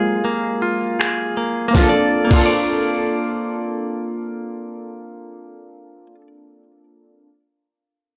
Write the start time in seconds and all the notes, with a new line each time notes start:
Already playing: F#3 G#3 A#3 C4 F4 G4 G#4 A#4
0.25 A#3
0.62 F4
1.00 G#4, finger snap
1.37 A#3
1.68 A#3
1.73 C4 D4 F4, kick, snare
1.77 F4 A4
1.83 A4
1.89 D5
2.25 A#3
2.29 C4 D4 F4, kick, crash
2.34 F4 A4
2.39 A4
2.46 D5